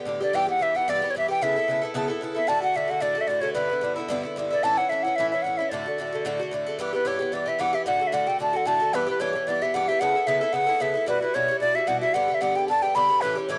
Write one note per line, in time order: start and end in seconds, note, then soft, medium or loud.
0.05 0.20 A2 medium
0.05 0.21 D3 medium
0.05 0.21 B3 medium
0.05 0.19 G4 medium
0.20 0.34 D3 soft
0.20 0.34 B3 medium
0.20 0.33 G4 medium
0.20 0.37 D5 loud
0.33 0.48 G2 medium
0.33 0.48 E3 medium
0.33 0.47 B3 medium
0.33 0.45 G4 medium
0.33 0.49 G5 loud
0.47 0.59 E3 soft
0.47 0.60 B3 soft
0.47 0.60 G4 medium
0.47 0.64 F#5 loud
0.59 0.74 G2 medium
0.59 0.75 E3 medium
0.59 0.75 B3 medium
0.59 0.73 G4 medium
0.59 0.78 E5 loud
0.75 0.88 E3 soft
0.75 0.88 B3 medium
0.75 0.87 G4 medium
0.75 0.91 F#5 loud
0.88 1.02 G2 medium
0.88 1.02 E3 medium
0.88 1.03 B3 medium
0.88 1.01 G4 medium
0.88 1.12 D5 loud
1.02 1.15 E3 soft
1.02 1.15 B3 medium
1.02 1.14 G4 medium
1.10 1.15 C#5 medium
1.15 1.29 G2 medium
1.15 1.29 E3 medium
1.15 1.29 B3 medium
1.15 1.27 G4 medium
1.15 1.29 E5 loud
1.28 1.42 E3 soft
1.28 1.41 B3 soft
1.28 1.41 G4 medium
1.28 1.44 G5 medium
1.41 1.55 C#3 medium
1.41 1.56 B3 medium
1.41 1.56 E4 medium
1.41 1.55 A4 medium
1.41 1.83 E5 loud
1.56 1.68 B3 soft
1.56 1.69 E4 soft
1.56 1.68 A4 soft
1.68 1.82 C#3 medium
1.68 1.83 B3 medium
1.68 1.82 E4 medium
1.68 1.80 A4 medium
1.82 1.94 B3 medium
1.82 1.95 E4 medium
1.82 1.94 A4 medium
1.94 2.09 C#3 medium
1.94 2.09 B3 medium
1.94 2.08 E4 medium
1.94 2.07 A4 medium
2.08 2.21 B3 soft
2.08 2.22 E4 medium
2.08 2.21 A4 medium
2.21 2.36 C#3 medium
2.21 2.36 B3 medium
2.21 2.35 E4 medium
2.21 2.33 A4 medium
2.35 2.48 B3 soft
2.35 2.48 E4 medium
2.35 2.48 A4 soft
2.35 2.50 E5 loud
2.47 2.62 A2 medium
2.47 2.63 D3 medium
2.47 2.62 A3 medium
2.47 2.60 F#4 medium
2.47 2.62 A5 loud
2.62 2.74 D3 soft
2.62 2.75 A3 medium
2.62 2.75 F#4 medium
2.62 2.78 F#5 loud
2.74 2.89 A2 medium
2.74 2.90 D3 medium
2.74 2.89 A3 medium
2.74 2.86 F#4 medium
2.74 2.92 E5 medium
2.88 3.00 D3 soft
2.88 3.01 A3 soft
2.88 3.01 F#4 medium
2.88 3.03 F#5 medium
3.00 3.16 A2 medium
3.00 3.16 D3 medium
3.00 3.16 A3 medium
3.00 3.14 F#4 medium
3.00 3.22 D5 loud
3.15 3.28 D3 soft
3.15 3.29 A3 soft
3.15 3.28 F#4 medium
3.21 3.29 E5 medium
3.27 3.43 A2 medium
3.27 3.43 D3 medium
3.27 3.42 A3 medium
3.27 3.40 F#4 medium
3.27 3.42 D5 medium
3.41 3.54 D3 soft
3.41 3.56 A3 medium
3.41 3.55 F#4 medium
3.41 3.53 C#5 loud
3.54 3.70 G2 medium
3.54 3.70 D3 medium
3.54 3.70 B3 medium
3.54 3.68 E4 medium
3.54 3.93 B4 medium
3.69 3.82 D3 soft
3.69 3.82 B3 soft
3.69 3.83 E4 soft
3.81 3.96 G2 medium
3.81 3.97 D3 medium
3.81 3.97 B3 medium
3.81 3.95 E4 medium
3.96 4.08 D3 soft
3.96 4.09 B3 medium
3.96 4.09 E4 medium
4.08 4.23 G2 medium
4.08 4.24 D3 medium
4.08 4.24 B3 loud
4.08 4.22 E4 loud
4.23 4.36 D3 medium
4.23 4.37 B3 medium
4.23 4.36 E4 medium
4.36 4.51 G2 medium
4.36 4.51 D3 medium
4.36 4.52 B3 medium
4.36 4.49 E4 medium
4.51 4.64 D3 soft
4.51 4.64 B3 medium
4.51 4.63 E4 medium
4.51 4.65 D5 loud
4.63 4.78 A2 medium
4.63 4.78 E3 medium
4.63 4.78 C#4 medium
4.63 4.76 E4 medium
4.63 4.79 A5 loud
4.78 4.90 E3 soft
4.78 4.91 C#4 soft
4.78 4.90 E4 soft
4.78 4.91 F#5 loud
4.89 5.04 A2 medium
4.89 5.05 E3 medium
4.89 5.06 C#4 medium
4.89 5.03 E4 medium
4.89 5.04 E5 loud
5.03 5.18 C#4 medium
5.03 5.17 E4 medium
5.03 5.17 F#5 loud
5.08 5.18 E3 soft
5.16 5.32 A2 medium
5.16 5.32 E3 medium
5.16 5.33 C#4 medium
5.16 5.30 E5 loud
5.20 5.31 E4 medium
5.30 5.45 C#4 medium
5.30 5.44 E4 medium
5.30 5.44 E5 medium
5.35 5.44 E3 soft
5.42 5.59 A2 soft
5.42 5.59 E3 soft
5.42 5.59 C#4 medium
5.42 5.59 F#5 medium
5.47 5.57 E4 medium
5.57 5.72 C#4 medium
5.57 5.71 E4 medium
5.57 5.71 E5 medium
5.62 5.72 E3 soft
5.69 5.86 A2 medium
5.69 5.86 D3 medium
5.69 5.87 A3 medium
5.69 6.51 D5 medium
5.74 5.85 F#4 medium
5.86 5.98 D3 soft
5.86 5.99 A3 soft
5.86 5.98 F#4 medium
5.98 6.12 A2 medium
5.98 6.13 D3 medium
5.98 6.13 A3 medium
5.98 6.11 F#4 medium
6.12 6.24 D3 medium
6.12 6.25 A3 soft
6.12 6.25 F#4 medium
6.25 6.39 A2 medium
6.25 6.40 D3 medium
6.25 6.40 A3 medium
6.25 6.38 F#4 medium
6.39 6.51 D3 soft
6.39 6.53 A3 medium
6.39 6.52 F#4 medium
6.51 6.66 A2 medium
6.51 6.67 D3 medium
6.51 6.67 A3 medium
6.51 6.65 F#4 medium
6.67 6.79 D3 soft
6.67 6.80 A3 medium
6.67 6.79 F#4 medium
6.79 6.93 G2 medium
6.79 6.93 E3 medium
6.79 6.93 B3 medium
6.79 6.92 G4 medium
6.79 6.92 B4 medium
6.93 7.04 E3 soft
6.93 7.05 B3 medium
6.93 7.05 G4 medium
6.93 7.09 B4 medium
7.05 7.19 G2 medium
7.05 7.20 E3 medium
7.05 7.19 B3 medium
7.05 7.18 G4 medium
7.05 7.35 C#5 medium
7.19 7.32 E3 soft
7.19 7.32 B3 medium
7.19 7.32 G4 medium
7.32 7.46 G2 medium
7.32 7.47 E3 medium
7.32 7.46 B3 medium
7.32 7.44 G4 medium
7.32 7.50 D5 medium
7.46 7.58 E3 soft
7.46 7.59 B3 soft
7.46 7.59 G4 medium
7.46 7.62 E5 medium
7.59 7.73 G2 medium
7.59 7.74 E3 medium
7.59 7.73 B3 medium
7.59 7.72 G4 medium
7.59 7.76 F#5 loud
7.73 7.86 E3 soft
7.73 7.86 B3 soft
7.73 7.86 G4 medium
7.73 7.86 E5 medium
7.86 8.00 A2 medium
7.86 8.01 D3 medium
7.86 8.00 A3 medium
7.86 7.98 F#4 medium
7.86 8.09 F#5 loud
7.99 8.12 D3 soft
7.99 8.12 A3 medium
7.99 8.12 F#4 soft
8.07 8.15 E5 medium
8.12 8.27 A2 medium
8.12 8.27 D3 medium
8.12 8.27 A3 medium
8.12 8.25 F#4 medium
8.12 8.29 F#5 medium
8.27 8.39 D3 medium
8.27 8.39 A3 soft
8.27 8.39 F#4 medium
8.27 8.40 G5 medium
8.39 8.53 A2 medium
8.39 8.54 D3 medium
8.39 8.54 A3 medium
8.39 8.52 F#4 medium
8.39 8.58 A5 loud
8.53 8.65 D3 medium
8.53 8.66 A3 soft
8.53 8.66 F#4 medium
8.53 8.68 F#5 medium
8.65 8.80 A2 medium
8.65 8.81 D3 medium
8.65 8.80 A3 medium
8.65 8.79 F#4 medium
8.65 8.96 A5 loud
8.80 8.93 D3 medium
8.80 8.94 A3 medium
8.80 8.93 F#4 medium
8.93 9.07 G2 medium
8.93 9.08 E3 medium
8.93 9.07 B3 medium
8.93 9.05 G4 loud
8.93 9.08 B4 loud
9.06 9.19 E3 soft
9.06 9.20 B3 soft
9.06 9.20 G4 medium
9.06 9.22 B4 medium
9.20 9.34 G2 medium
9.20 9.34 E3 medium
9.20 9.34 B3 medium
9.20 9.32 G4 medium
9.20 9.49 C#5 medium
9.33 9.47 E3 medium
9.33 9.47 B3 soft
9.33 9.46 G4 medium
9.47 9.61 G2 medium
9.47 9.61 E3 medium
9.47 9.62 B3 medium
9.47 9.60 G4 medium
9.47 9.64 D5 loud
9.62 9.74 E3 soft
9.62 9.75 B3 medium
9.62 9.74 G4 medium
9.62 9.76 E5 medium
9.74 9.88 G2 medium
9.74 9.88 E3 medium
9.74 9.89 B3 medium
9.74 9.87 G4 medium
9.74 9.90 F#5 loud
9.88 10.01 E3 soft
9.88 10.01 B3 medium
9.88 10.01 G4 medium
9.88 10.01 E5 loud
10.00 10.15 C#3 medium
10.00 10.15 B3 medium
10.00 10.15 E4 medium
10.00 10.14 A4 medium
10.00 10.28 F#5 loud
10.15 10.27 B3 soft
10.15 10.27 E4 soft
10.15 10.27 A4 medium
10.27 10.41 C#3 medium
10.27 10.42 B3 medium
10.27 10.41 E4 medium
10.27 10.40 A4 medium
10.27 10.54 E5 medium
10.41 10.53 B3 soft
10.41 10.54 E4 medium
10.41 10.54 A4 medium
10.53 10.67 C#3 medium
10.53 10.68 B3 medium
10.53 10.67 E4 medium
10.53 10.65 A4 medium
10.53 10.83 F#5 loud
10.67 10.79 B3 soft
10.67 10.80 E4 soft
10.67 10.80 A4 medium
10.80 10.94 C#3 medium
10.80 10.95 B3 medium
10.80 10.94 E4 medium
10.80 10.93 A4 medium
10.80 11.08 E5 medium
10.94 11.07 B3 soft
10.94 11.07 E4 medium
10.94 11.07 A4 soft
11.06 11.21 B2 medium
11.06 11.22 G3 medium
11.06 11.21 E4 medium
11.06 11.19 F#4 medium
11.06 11.21 B4 medium
11.21 11.34 G3 soft
11.21 11.34 E4 medium
11.21 11.34 F#4 soft
11.21 11.36 B4 medium
11.34 11.48 B2 medium
11.34 11.49 G3 medium
11.34 11.48 E4 medium
11.34 11.47 F#4 medium
11.34 11.60 C#5 loud
11.48 11.60 G3 soft
11.48 11.61 E4 soft
11.48 11.61 F#4 medium
11.60 11.75 B2 medium
11.60 11.75 G3 soft
11.60 11.75 E4 medium
11.60 11.73 F#4 medium
11.60 11.77 D5 loud
11.74 11.86 G3 soft
11.74 11.87 E4 soft
11.74 11.87 F#4 soft
11.74 11.89 E5 medium
11.87 12.02 B2 medium
11.87 12.02 G3 medium
11.87 12.02 E4 medium
11.87 12.00 F#4 medium
11.87 12.00 F#5 loud
12.01 12.14 G3 soft
12.01 12.15 E4 medium
12.01 12.14 F#4 medium
12.01 12.15 E5 loud
12.14 12.28 G2 medium
12.14 12.29 D3 medium
12.14 12.29 B3 medium
12.14 12.27 G4 medium
12.14 12.36 F#5 loud
12.28 12.40 D3 soft
12.28 12.41 B3 soft
12.28 12.41 G4 medium
12.34 12.43 E5 medium
12.41 12.55 G2 medium
12.41 12.56 D3 medium
12.41 12.56 B3 medium
12.41 12.54 G4 medium
12.41 12.58 F#5 loud
12.55 12.68 D3 soft
12.55 12.69 B3 soft
12.55 12.68 G4 medium
12.55 12.68 G5 medium
12.68 12.82 G2 medium
12.68 12.83 D3 medium
12.68 12.83 B3 medium
12.68 12.81 G4 medium
12.68 12.84 A5 loud
12.82 12.94 D3 soft
12.82 12.95 B3 medium
12.82 12.95 G4 medium
12.82 12.97 G5 loud
12.95 13.09 G2 medium
12.95 13.09 D3 medium
12.95 13.09 B3 medium
12.95 13.08 G4 medium
12.95 13.23 B5 loud
13.09 13.22 D3 soft
13.09 13.22 B3 medium
13.09 13.21 G4 medium
13.21 13.36 A2 medium
13.21 13.36 E3 medium
13.21 13.36 C#4 medium
13.21 13.34 G4 medium
13.21 13.36 B4 loud
13.35 13.48 E3 soft
13.35 13.49 C#4 soft
13.35 13.48 G4 medium
13.47 13.59 A2 medium
13.47 13.59 E3 medium
13.47 13.59 C#4 medium
13.47 13.59 G4 medium
13.47 13.59 C#5 medium